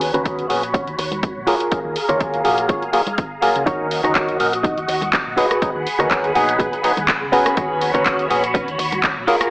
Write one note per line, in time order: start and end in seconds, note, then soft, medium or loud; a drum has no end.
0.00 0.11 F#3 medium
0.00 0.11 B3 medium
0.00 0.11 C#4 medium
0.00 1.45 F#4 medium
0.00 0.11 G#4 medium
0.00 1.45 C#5 medium
0.00 1.45 B5 medium
0.00 open hi-hat loud
0.14 0.46 D#2 medium
0.14 0.22 F#3 medium
0.14 0.23 B3 medium
0.14 0.44 C#4 medium
0.14 0.23 C#4 medium
0.14 0.44 F#4 medium
0.14 0.23 B4 medium
0.14 0.44 B4 medium
0.14 closed hi-hat soft
0.14 tambourine soft
0.14 low conga medium
0.25 0.47 F#3 medium
0.25 0.47 B3 medium
0.25 0.47 C#4 medium
0.25 0.47 G#4 medium
0.25 kick loud
0.25 closed hi-hat medium
0.25 tambourine soft
0.39 closed hi-hat soft
0.49 0.83 A#1 medium
0.49 0.62 F#3 medium
0.49 0.62 B3 medium
0.49 0.62 C#4 medium
0.49 0.62 G#4 medium
0.49 open hi-hat medium
0.49 tambourine medium
0.63 closed hi-hat soft
0.74 0.87 C#4 medium
0.74 0.87 F#4 medium
0.74 0.88 C#5 medium
0.74 kick loud
0.74 closed hi-hat medium
0.87 0.96 D#2 medium
0.87 closed hi-hat soft
0.98 1.32 D#2 medium
0.98 muted clean electric guitar stroke medium
0.98 open hi-hat loud
1.11 muted clean electric guitar stroke soft
1.11 closed hi-hat soft
1.11 tambourine soft
1.11 high conga medium
1.23 kick loud
1.23 closed hi-hat medium
1.23 tambourine medium
1.36 1.45 A#1 medium
1.47 1.55 F#3 medium
1.47 1.55 A#3 medium
1.47 1.96 F4 medium
1.47 1.55 F4 medium
1.47 3.65 G#4 medium
1.47 1.55 G#4 medium
1.47 1.96 G#4 medium
1.47 1.96 A#4 medium
1.47 3.65 F5 medium
1.47 3.65 A#5 medium
1.47 open hi-hat medium
1.47 tambourine medium
1.60 closed hi-hat soft
1.60 tambourine soft
1.71 1.79 F#3 medium
1.71 1.79 A#3 medium
1.71 1.79 F4 medium
1.71 1.80 G#4 medium
1.71 muted fingered electric bass stroke soft
1.71 kick loud
1.71 closed hi-hat medium
1.85 1.94 D#2 medium
1.96 open hi-hat loud
1.96 tambourine medium
2.08 2.41 D#2 medium
2.08 2.17 F#3 medium
2.08 2.18 A#3 medium
2.08 2.39 F4 medium
2.08 2.18 F4 medium
2.08 2.39 G#4 medium
2.08 2.18 A#4 medium
2.08 2.40 C#5 medium
2.08 closed hi-hat soft
2.08 tambourine soft
2.08 low conga medium
2.20 2.42 F#3 medium
2.20 2.42 F4 medium
2.20 2.42 G#4 medium
2.20 kick loud
2.20 closed hi-hat medium
2.20 tambourine soft
2.34 closed hi-hat soft
2.44 2.65 A#1 medium
2.44 2.91 F#3 medium
2.44 2.91 A#3 medium
2.44 2.91 F4 medium
2.44 2.91 G#4 medium
2.44 open hi-hat medium
2.58 closed hi-hat soft
2.69 2.82 F4 medium
2.69 2.82 G#4 medium
2.69 2.83 C#5 medium
2.69 kick loud
2.69 closed hi-hat medium
2.82 closed hi-hat soft
2.92 3.01 F#3 medium
2.92 3.01 A#3 medium
2.92 3.01 F4 medium
2.92 3.01 G#4 medium
2.92 muted clean electric guitar stroke medium
2.92 open hi-hat loud
3.06 muted clean electric guitar stroke soft
3.06 closed hi-hat soft
3.06 tambourine soft
3.06 high conga medium
3.17 kick loud
3.17 closed hi-hat medium
3.17 tambourine soft
3.32 tambourine soft
3.42 3.64 F#3 medium
3.42 3.64 A#3 medium
3.42 3.64 F4 medium
3.42 3.64 G#4 medium
3.42 muted clean electric guitar stroke soft
3.42 muted fingered electric bass stroke soft
3.42 open hi-hat medium
3.42 tambourine medium
3.56 3.65 C#2 medium
3.56 closed hi-hat soft
3.56 tambourine soft
3.66 4.00 D#2 medium
3.66 4.01 F#3 medium
3.66 4.01 C#4 medium
3.66 3.85 D#4 loud
3.66 4.01 D#4 medium
3.66 5.36 F#4 medium
3.66 3.86 F#4 medium
3.66 4.01 A#4 medium
3.66 3.86 C#5 loud
3.66 5.36 D#5 medium
3.66 5.36 C#6 medium
3.66 kick loud
3.66 closed hi-hat medium
3.91 open hi-hat loud
3.91 tambourine medium
4.03 4.36 D#2 medium
4.03 4.12 F#3 medium
4.03 4.13 C#4 medium
4.03 4.34 D#4 medium
4.03 4.13 D#4 medium
4.03 4.34 F#4 medium
4.03 4.35 C#5 medium
4.03 4.13 D#5 medium
4.03 cross-stick medium
4.03 closed hi-hat soft
4.03 tambourine soft
4.03 low conga medium
4.15 4.37 F#3 medium
4.15 4.37 C#4 medium
4.15 4.37 D#4 medium
4.15 4.38 A#4 medium
4.15 kick loud
4.15 clap loud
4.15 closed hi-hat medium
4.29 closed hi-hat soft
4.39 4.73 A#1 medium
4.39 4.52 F#3 medium
4.39 4.52 C#4 medium
4.39 4.52 D#4 medium
4.39 4.53 A#4 medium
4.39 open hi-hat medium
4.52 closed hi-hat soft
4.52 tambourine soft
4.63 4.77 D#4 medium
4.63 4.78 F#4 medium
4.63 4.78 D#5 medium
4.63 kick loud
4.63 closed hi-hat medium
4.77 4.86 D#2 medium
4.77 closed hi-hat soft
4.77 tambourine soft
4.88 5.22 D#2 loud
4.88 muted clean electric guitar stroke medium
4.88 open hi-hat loud
5.01 muted clean electric guitar stroke soft
5.01 closed hi-hat soft
5.01 tambourine soft
5.01 high conga medium
5.13 kick loud
5.13 clap loud
5.13 closed hi-hat medium
5.26 5.35 A#1 medium
5.37 5.45 F#3 medium
5.37 5.45 B3 medium
5.37 5.45 D#4 medium
5.37 5.86 F#4 medium
5.37 7.30 G#4 medium
5.37 5.86 G#4 medium
5.37 5.46 G#4 medium
5.37 5.87 B4 medium
5.37 7.31 F#5 medium
5.37 9.24 B5 medium
5.37 open hi-hat medium
5.37 tambourine medium
5.51 cross-stick medium
5.51 closed hi-hat soft
5.51 tambourine soft
5.62 5.70 F#3 medium
5.62 5.70 B3 medium
5.62 5.70 D#4 medium
5.62 5.70 G#4 medium
5.62 muted fingered electric bass stroke soft
5.62 kick loud
5.62 closed hi-hat medium
5.75 5.84 D#2 medium
5.86 open hi-hat medium
5.86 tambourine medium
5.99 6.32 D#2 medium
5.99 6.08 F#3 medium
5.99 6.08 B3 medium
5.99 6.08 D#4 medium
5.99 6.29 F#4 medium
5.99 6.29 G#4 medium
5.99 6.08 A#4 medium
5.99 6.30 C#5 medium
5.99 cross-stick medium
5.99 closed hi-hat soft
5.99 tambourine soft
5.99 low conga medium
6.10 6.32 F#3 medium
6.10 6.32 B3 medium
6.10 6.33 D#4 medium
6.10 6.33 G#4 medium
6.10 kick loud
6.10 clap loud
6.10 closed hi-hat medium
6.24 closed hi-hat soft
6.35 6.55 A#1 medium
6.35 6.81 F#3 medium
6.35 6.81 B3 medium
6.35 6.81 D#4 medium
6.35 6.82 G#4 medium
6.35 open hi-hat medium
6.49 closed hi-hat soft
6.59 6.70 A#1 medium
6.59 6.72 F#4 medium
6.59 6.73 G#4 medium
6.59 6.73 B4 medium
6.59 kick loud
6.59 closed hi-hat medium
6.73 closed hi-hat soft
6.83 6.92 F#3 medium
6.83 6.92 B3 medium
6.83 6.92 D#4 medium
6.83 6.92 G#4 medium
6.83 muted clean electric guitar stroke medium
6.83 open hi-hat loud
6.83 tambourine medium
6.97 7.06 D#2 medium
6.97 muted clean electric guitar stroke soft
6.97 closed hi-hat soft
6.97 tambourine soft
6.97 high conga medium
7.08 kick loud
7.08 clap loud
7.08 closed hi-hat medium
7.22 7.31 C#2 medium
7.32 7.54 F#3 medium
7.32 7.54 B3 medium
7.32 7.81 C#4 medium
7.32 7.55 C#4 medium
7.32 9.26 F#4 medium
7.32 7.81 F#4 medium
7.32 7.55 G#4 medium
7.32 7.82 B4 loud
7.32 9.26 C#5 medium
7.32 open hi-hat medium
7.32 tambourine medium
7.46 cross-stick medium
7.46 closed hi-hat soft
7.46 tambourine soft
7.57 7.90 D#2 loud
7.57 7.92 F#3 medium
7.57 7.92 B3 medium
7.57 7.92 C#4 medium
7.57 7.92 G#4 medium
7.57 kick loud
7.57 closed hi-hat medium
7.57 tambourine soft
7.81 open hi-hat medium
7.81 tambourine loud
7.94 8.27 D#2 medium
7.94 8.03 F#3 medium
7.94 8.03 B3 medium
7.94 8.24 C#4 medium
7.94 8.04 C#4 medium
7.94 8.25 F#4 medium
7.94 8.04 B4 medium
7.94 8.25 C#5 medium
7.94 cross-stick medium
7.94 closed hi-hat medium
7.94 tambourine soft
7.94 low conga medium
8.06 8.27 F#3 medium
8.06 8.28 B3 medium
8.06 8.28 C#4 medium
8.06 8.28 G#4 medium
8.06 kick loud
8.06 clap loud
8.06 closed hi-hat medium
8.06 tambourine medium
8.19 closed hi-hat soft
8.30 8.64 A#1 loud
8.30 8.43 F#3 medium
8.30 8.43 B3 medium
8.30 8.43 C#4 medium
8.30 8.43 G#4 medium
8.30 open hi-hat medium
8.30 tambourine medium
8.44 closed hi-hat medium
8.44 tambourine soft
8.54 8.68 C#4 medium
8.54 8.68 F#4 medium
8.54 8.68 B4 medium
8.54 kick loud
8.54 closed hi-hat medium
8.54 tambourine soft
8.68 8.77 D#2 medium
8.68 closed hi-hat soft
8.68 tambourine soft
8.78 9.13 D#2 loud
8.78 muted clean electric guitar stroke medium
8.78 open hi-hat loud
8.78 tambourine medium
8.92 muted clean electric guitar stroke soft
8.92 closed hi-hat medium
8.92 tambourine soft
8.92 high conga medium
9.03 kick loud
9.03 clap loud
9.03 closed hi-hat medium
9.17 9.26 A#1 medium
9.27 9.35 F#3 medium
9.27 9.35 A#3 medium
9.27 9.50 F4 medium
9.27 9.36 F4 medium
9.27 9.50 G#4 medium
9.27 9.36 G#4 medium
9.27 9.50 G#4 medium
9.27 9.50 A#4 loud
9.27 9.50 F5 medium
9.27 9.50 A#5 medium
9.27 open hi-hat medium
9.27 tambourine loud
9.41 cross-stick medium
9.41 closed hi-hat medium
9.41 tambourine soft